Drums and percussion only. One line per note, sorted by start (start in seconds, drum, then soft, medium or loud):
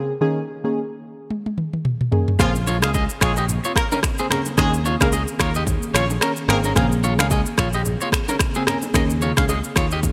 1.30 high tom medium
1.46 high tom medium
1.58 mid tom medium
1.73 mid tom medium
1.85 mid tom medium
2.01 mid tom medium
2.12 floor tom loud
2.28 floor tom medium
2.40 finger snap medium
2.40 kick loud
2.40 cross-stick medium
2.40 low conga medium
2.40 shaker medium
2.55 shaker soft
2.67 low bongo medium
2.67 shaker medium
2.82 finger snap medium
2.82 cross-stick loud
2.82 low bongo medium
2.82 shaker medium
2.94 kick loud
2.94 high bongo medium
2.94 shaker medium
3.10 shaker medium
3.21 finger snap medium
3.21 kick medium
3.21 cross-stick loud
3.21 shaker medium
3.37 shaker medium
3.49 low conga medium
3.49 shaker medium
3.64 shaker medium
3.76 finger snap medium
3.76 kick medium
3.76 cross-stick loud
3.76 shaker medium
3.92 low bongo medium
3.92 shaker medium
4.03 finger snap medium
4.03 kick loud
4.03 cross-stick loud
4.03 high bongo medium
4.03 shaker medium
4.18 shaker soft
4.31 finger snap medium
4.31 cross-stick loud
4.31 high bongo soft
4.31 low conga medium
4.31 shaker soft
4.46 low bongo medium
4.46 shaker medium
4.58 finger snap medium
4.58 kick loud
4.58 cross-stick medium
4.58 low conga medium
4.58 shaker medium
4.74 shaker soft
4.85 low bongo medium
4.85 shaker medium
5.01 finger snap medium
5.01 kick loud
5.01 cross-stick loud
5.01 low bongo medium
5.01 shaker medium
5.12 high bongo medium
5.12 shaker medium
5.28 shaker medium
5.40 finger snap medium
5.40 kick medium
5.40 cross-stick loud
5.40 shaker medium
5.55 shaker medium
5.67 kick medium
5.67 low conga medium
5.67 shaker medium
5.83 shaker medium
5.95 finger snap medium
5.95 cross-stick loud
5.95 shaker medium
6.10 low bongo medium
6.10 shaker medium
6.21 finger snap medium
6.21 cross-stick loud
6.21 high bongo medium
6.21 shaker medium
6.36 shaker medium
6.49 finger snap medium
6.49 cross-stick loud
6.49 high bongo soft
6.49 low conga medium
6.49 shaker soft
6.64 low bongo medium
6.64 shaker medium
6.76 finger snap medium
6.76 kick loud
6.76 cross-stick medium
6.76 low conga medium
6.76 shaker medium
6.92 shaker soft
7.03 low bongo medium
7.03 shaker medium
7.19 finger snap medium
7.19 cross-stick loud
7.19 low bongo medium
7.19 shaker medium
7.31 kick medium
7.31 high bongo medium
7.31 shaker medium
7.46 shaker medium
7.58 finger snap medium
7.58 kick medium
7.58 cross-stick loud
7.58 shaker medium
7.73 shaker medium
7.85 low conga medium
7.85 shaker medium
8.01 shaker medium
8.12 finger snap medium
8.12 kick loud
8.12 cross-stick loud
8.12 shaker medium
8.28 low bongo medium
8.28 shaker medium
8.39 finger snap medium
8.39 kick loud
8.39 cross-stick medium
8.39 high bongo medium
8.39 shaker medium
8.55 shaker medium
8.67 finger snap medium
8.67 cross-stick loud
8.67 high bongo soft
8.67 low conga medium
8.67 shaker soft
8.82 low bongo medium
8.82 shaker medium
8.94 finger snap medium
8.94 kick loud
8.94 cross-stick medium
8.94 low conga medium
8.94 shaker medium
9.10 shaker soft
9.22 low bongo medium
9.22 shaker medium
9.37 finger snap medium
9.37 kick loud
9.37 cross-stick loud
9.37 low bongo medium
9.37 shaker medium
9.49 high bongo medium
9.49 shaker medium
9.64 shaker medium
9.76 finger snap medium
9.76 kick medium
9.76 cross-stick loud
9.76 shaker medium
9.91 shaker medium
10.03 kick medium
10.03 low conga medium
10.03 shaker medium